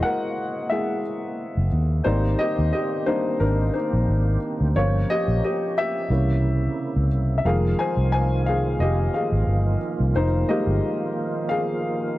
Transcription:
Already playing: G#3 A#3 E4 F#4 C5 D#5
0.03 A#4 F#5
0.70 G#3 A#3 E4 G#4 E5
1.57 F#1
1.72 D#2
2.04 G#1 D#3 G3 A#3 C4 D#4 G4 C5 D5
2.39 G4 D#5
2.59 D#2
2.73 G4 D#5
3.06 G3 A#3 C4 D4 D#4 C5
3.40 G#1 D4 A#4
3.74 D#4 C5
3.93 A#1
4.08 G#1
4.61 D2
4.75 G1 F3 A#3 C#4 F4 C#5
5.10 G4 D#5
5.28 A#1
5.44 G4 D#5
5.78 G4 E5
6.09 C2 C3 C#3 E3 A#3 C#4 E4
6.96 C#2
7.12 C2
7.38 E5
7.44 F1 D#3 F3 G#3 A#3 F4 G#4 F5
7.79 C5 G#5
7.97 C2
8.12 C5 G#5
8.46 G#4 F5
8.80 F1 G4 D#5
9.14 G#4 F5
9.32 G#1
9.47 G1
10.00 C2
10.15 F1 D#4 C5
10.49 D#3 G3 G#3 A#3 G4 D#5
10.67 G1
11.49 G#4 F5

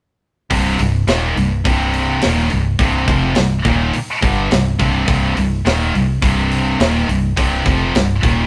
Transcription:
0.50 C1 C2 G2 C3, kick, open hi-hat
0.79 C1 C2 G2, open hi-hat
1.07 D#1 D#2 A#2 D#3, snare, open hi-hat
1.37 C1 C2 G2, open hi-hat
1.65 C1 C2 G2 C3, kick, open hi-hat
1.94 open hi-hat
2.22 D#1 D#2 A#2 D#3, snare, open hi-hat
2.50 C1 C2 G2, open hi-hat
2.79 C1 C2 G2 C3, kick, open hi-hat
3.08 F1 F2 C3 F3, kick, open hi-hat
3.35 C1 C2 G2, snare, open hi-hat
3.65 D#1 D#2 A#2 D#3, kick, open hi-hat
3.93 muted distorted electric guitar stroke, muted overdriven electric guitar stroke, open hi-hat
4.21 G1 G2 D3 G3, kick, open hi-hat
4.51 C1 C2 G2, snare, open hi-hat
4.79 C1 C2 G2 C3, kick, open hi-hat
5.08 C1 C2 G2 C3, kick, open hi-hat
5.36 C1 C2 G2, open hi-hat
5.65 D#1 D#2 A#2 D#3, snare, open hi-hat
5.95 C1 C2 G2, open hi-hat
6.22 C1 C2 G2 C3, kick, open hi-hat
6.52 open hi-hat
6.79 D#1 D#2 A#2 D#3, snare, open hi-hat
7.08 C1 C2 G2, open hi-hat
7.37 C1 C2 G2 C3, kick, open hi-hat
7.65 F1 F2 C3 F3, kick, open hi-hat
7.95 C1 C2 G2, snare, open hi-hat
8.23 D#1 D#2 A#2 D#3, kick, open hi-hat

